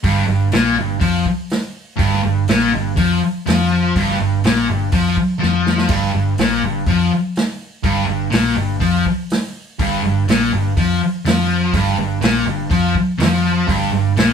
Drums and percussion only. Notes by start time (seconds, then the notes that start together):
0.03 kick, open hi-hat
0.52 snare, open hi-hat
1.01 kick, open hi-hat
1.26 kick
1.50 snare, open hi-hat
1.99 kick, open hi-hat
2.13 snare
2.48 snare, open hi-hat
2.97 kick, open hi-hat
3.47 snare, open hi-hat
3.96 kick, open hi-hat
4.10 snare
4.44 snare, open hi-hat
4.92 kick, open hi-hat
5.17 kick
5.43 snare
5.66 snare
5.78 snare
5.89 kick, open hi-hat, splash
6.38 snare, open hi-hat
6.86 kick, open hi-hat
7.36 snare, open hi-hat
7.84 kick, open hi-hat
8.32 snare, open hi-hat
8.81 kick, open hi-hat
9.06 kick
9.30 snare, open hi-hat
9.79 kick, open hi-hat
10.28 snare, open hi-hat
10.77 kick, open hi-hat
11.26 snare, open hi-hat
11.74 kick, open hi-hat
12.22 snare, open hi-hat
12.71 kick, open hi-hat
12.95 kick
13.20 snare, open hi-hat
13.69 kick, open hi-hat
14.17 snare, open hi-hat